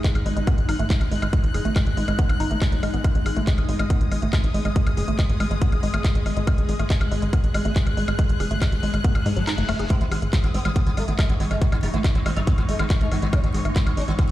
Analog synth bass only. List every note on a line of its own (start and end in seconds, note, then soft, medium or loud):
0.15 0.21 G#1 medium
0.26 0.32 G#1 loud
0.37 0.43 G#1 medium
0.58 0.64 G#1 medium
0.69 0.75 G#1 loud
0.79 0.86 G#1 medium
1.01 1.07 G#1 medium
1.12 1.18 G#1 medium
1.22 1.28 G#1 medium
1.44 1.50 G#1 medium
1.54 1.61 F#1 loud
1.65 1.71 G#1 medium
1.87 1.93 G#1 medium
1.97 2.03 G#1 loud
2.08 2.14 G#1 medium
2.29 2.36 G#1 medium
2.40 2.46 G#1 loud
2.51 2.57 G#1 medium
2.72 2.78 G#1 medium
2.83 2.89 G#1 loud
2.94 3.00 G#1 medium
3.15 3.21 G#1 medium
3.26 3.32 G#1 loud
3.37 3.43 G#1 medium
3.58 3.64 G#1 medium
3.69 3.75 G#1 loud
3.79 3.86 G#1 medium
4.01 4.07 G#1 medium
4.12 4.18 G#1 loud
4.22 4.28 G#1 medium
4.44 4.50 G#1 medium
4.54 4.61 G#1 loud
4.65 4.71 G#1 medium
4.87 4.93 G#1 medium
4.97 5.03 F#1 loud
5.08 5.14 G#1 medium
5.29 5.36 G#1 medium
5.40 5.46 G#1 loud
5.51 5.57 G#1 medium
5.72 5.78 G#1 medium
5.83 5.89 G#1 loud
5.94 6.00 G#1 medium
6.15 6.21 G#1 medium
6.26 6.32 G#1 loud
6.37 6.43 G#1 medium
6.58 6.64 G#1 medium
6.69 6.75 G#1 loud
6.79 6.86 G#1 medium
7.01 7.07 G#1 medium
7.12 7.18 G#1 loud
7.22 7.28 G#1 medium
7.44 7.50 G#1 medium
7.54 7.61 G#1 loud
7.65 7.71 G#1 medium
7.87 7.93 G#1 medium
7.97 8.04 G#1 loud
8.08 8.14 G#1 medium
8.30 8.36 G#1 medium
8.40 8.46 F#1 loud
8.51 8.57 G#1 medium
8.72 8.79 G#1 medium
8.83 8.89 G#1 loud
8.94 9.00 G#1 medium
9.15 9.21 G#1 medium
9.26 9.32 G#2 loud
9.37 9.43 G#1 medium
9.58 9.64 F#1 medium
9.69 9.75 F#1 loud
9.79 9.86 F#1 medium
10.01 10.07 G#1 medium
10.12 10.18 G#1 loud
10.22 10.28 G#1 medium
10.44 10.50 G#1 medium
10.54 10.61 G#1 loud
10.65 10.71 G#1 medium
10.87 10.93 G#1 medium
10.97 11.03 G#1 loud
11.08 11.14 G#1 medium
11.29 11.36 G#1 medium
11.40 11.46 G#1 loud
11.51 11.57 G#1 medium
11.72 11.78 G#1 medium
11.83 11.89 F#1 loud
11.94 12.00 G#1 medium
12.15 12.21 G#1 medium
12.26 12.32 G#1 loud
12.37 12.43 G#1 medium
12.58 12.64 G#1 medium
12.69 12.75 G#1 medium
12.79 12.86 G#1 loud
13.01 13.07 G#1 medium
13.12 13.18 G#1 loud
13.22 13.28 G#1 medium
13.44 13.50 G#1 medium
13.54 13.61 G#1 loud
13.65 13.71 G#1 medium
13.87 13.93 G#1 medium
13.97 14.03 G#1 loud
14.08 14.14 G#1 medium